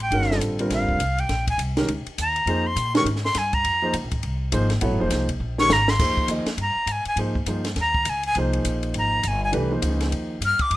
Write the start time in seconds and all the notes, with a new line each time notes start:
0.00 G5, ride
0.11 G1 D#3 G#3 C#4 F#4 A#4, ride
0.22 snare
0.30 D3 G3 C4 F4 A4, snare
0.39 A1, hi-hat pedal, ride
0.59 D3 G3 C4 F4 A#4, ride
0.70 A#1 F5, snare, ride
0.80 G1
0.89 F1, kick
0.98 C2, hi-hat pedal, ride
1.18 G5, ride
1.29 A#1, snare, ride
1.47 G#5, kick, ride
1.58 C2, hi-hat pedal, ride
1.77 D#3 G#3 C#4 G4 A#4, snare, ride
1.88 C#2, ride
2.06 muted upright bass stroke, ride
2.18 D#2 A#5, hi-hat pedal, ride
2.36 ride
2.46 F2 F3 A#3 D#4 G#4 C5, ride
2.67 C6
2.76 A#2, hi-hat pedal, ride
2.95 D#3 G#3 C#4 G4 A#4 C#6, snare, ride
3.05 G#2, ride
3.16 snare
3.25 C6, snare
3.35 G2 G#5, snare, hi-hat pedal, ride
3.53 A#5, kick, ride
3.65 F2, ride
3.82 F3 A#3 D#4 G#4 C5
3.94 C#2, hi-hat pedal, ride
4.04 A#1
4.11 G#1, kick, ride
4.23 C2, ride
4.52 G#1 F3 A#3 D#4 G#4 C5, hi-hat pedal, ride
4.70 snare, ride
4.81 A#1 F#3 B3 E4 A4 C#5, ride
4.91 G#1
4.99 F1 F3 A#3 D#4 G#4 C5
5.10 C2, snare, hi-hat pedal, ride
5.29 kick, ride
5.40 A#1
5.58 D#3 G#3 C#4 G4 A#4 C#6, snare
5.69 G#1 A#5, snare, hi-hat pedal
5.88 C6, snare
5.99 F2 F3 A#3 D#4 G#4 C5, kick, snare, crash
6.17 muted upright bass stroke, kick
6.28 D#2 F3 A#3 D#4 G#4 D#5, hi-hat pedal, ride
6.45 muted upright bass stroke, snare, ride
6.57 G2, ride
6.62 A#5
6.76 muted upright bass stroke
6.86 G#2, hi-hat pedal, ride
6.92 G#5
7.05 G#5, muted upright bass stroke, ride
7.16 G#2 F3 A#3 D#4 G#4 C5, ride
7.35 kick
7.46 G2 F3 A#3 D#4 G#4 C5, hi-hat pedal, ride
7.65 snare, ride
7.76 D#2, snare, ride
7.81 A#5
7.94 kick
8.05 C#2, hi-hat pedal, ride
8.10 G#5
8.23 G#5, ride
8.35 C2 F3 A#3 D#4 G#4 C5, ride
8.53 ride
8.65 A#1, hi-hat pedal, ride
8.83 ride
8.94 G#1, ride
8.98 A#5
9.23 G1, hi-hat pedal, ride
9.28 G#5
9.44 G#5
9.52 C2 E3 A3 D4 G4 B4, ride
9.71 F3 A#3 D#4 G#4 C5
9.82 C#2, hi-hat pedal, ride
10.01 snare, ride
10.12 D#2, ride
10.41 G2, hi-hat pedal, ride
10.45 F6
10.59 D6, muted upright bass stroke, kick, ride
10.70 F2, ride